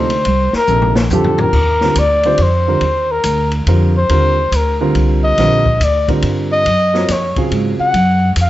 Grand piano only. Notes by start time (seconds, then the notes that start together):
0.69 C3 F3 A#3 D#4 A4
1.12 D3 G3 C4 F4 G4
1.83 D3 G3 C4 F4 A#4
2.25 D3 G3 C4 F4 C5
2.68 D3 G3 C4 F4 A#4
3.68 D3 G3 C4 F4 A#4
4.10 D3 G3 C4 F4 A#4
4.81 D3 G3 C4 F4 A#4
5.39 D3 G3 C4 F4 A#4
6.09 D3 G3 C4 F4 A#4
6.94 F#3 C4 F4 A#4 C#5
7.37 C#3 F#3 C4 F4 G#4